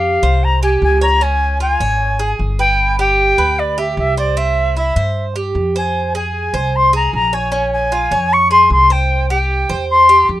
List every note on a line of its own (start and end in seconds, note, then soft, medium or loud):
0.00 0.16 F2 medium
0.00 0.22 G4 medium
0.00 0.45 F5 medium
0.23 0.78 C2 medium
0.23 0.61 C5 medium
0.44 0.62 A#5 loud
0.63 1.01 G4 medium
0.63 0.81 G#5 medium
0.82 1.75 C#2 medium
0.82 1.01 G#5 loud
1.01 1.21 C#5 medium
1.01 1.24 A#5 medium
1.21 1.60 C#4 medium
1.21 1.61 G#5 loud
1.60 1.80 F4 medium
1.60 2.36 G#5 medium
1.80 2.36 G#1 medium
1.80 2.19 C#5 medium
2.19 2.58 G#4 medium
2.39 3.32 G1 medium
2.59 2.98 B4 medium
2.59 2.96 G5 loud
2.99 3.37 G4 medium
2.99 3.60 G5 medium
3.38 3.93 D2 medium
3.38 3.77 B4 medium
3.59 3.80 D5 medium
3.78 4.16 G4 medium
3.78 3.98 E5 medium
3.97 4.90 C2 medium
3.97 4.16 E5 medium
4.17 4.37 C5 medium
4.17 4.38 D5 medium
4.37 4.75 C4 medium
4.37 4.76 E5 medium
4.77 4.96 E4 medium
4.77 5.25 E5 medium
4.96 5.51 G2 medium
4.96 5.35 C5 medium
5.36 5.74 G4 medium
5.55 6.48 F2 medium
5.76 6.14 C5 medium
5.76 6.13 G#5 medium
6.15 6.53 G#4 medium
6.15 6.77 G#5 medium
6.54 7.09 C2 medium
6.54 6.92 C5 medium
6.76 6.95 C6 medium
6.93 7.32 G#4 medium
6.93 7.13 A#5 medium
7.13 8.06 A#1 medium
7.13 7.35 A#5 medium
7.33 7.52 C#5 medium
7.33 7.73 G#5 medium
7.52 7.91 C#4 medium
7.73 8.34 G#5 medium
7.92 8.11 F4 medium
8.11 8.67 F2 medium
8.11 8.50 C#5 medium
8.33 8.50 C#6 loud
8.51 8.89 G#4 medium
8.51 8.70 C6 medium
8.70 9.63 C2 medium
8.70 8.93 C6 loud
8.90 9.29 C5 medium
8.90 9.29 G5 loud
9.30 9.69 G4 medium
9.30 9.85 G5 medium
9.69 10.25 E2 medium
9.69 10.08 C5 medium
9.90 10.26 C6 medium
10.09 10.40 G4 medium
10.29 10.40 F2 medium